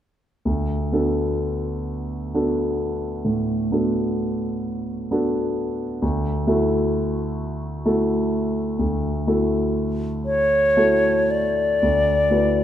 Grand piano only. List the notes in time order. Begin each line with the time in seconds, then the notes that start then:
0.45 D2
0.92 B3 D4 F#4 A4
2.34 B3 D4 F#4 A4
3.25 A2
3.72 B3 D4 F#4 A4
5.11 B3 D4 F#4 A4
6.02 D2
6.47 A3 E4 F#4 A4
7.85 A3 E4 F#4 A4
8.79 D2
9.27 A3 E4 F#4 A4
10.77 A3 E4 F#4 A4
11.82 D2
12.30 A3 E4 F#4 B4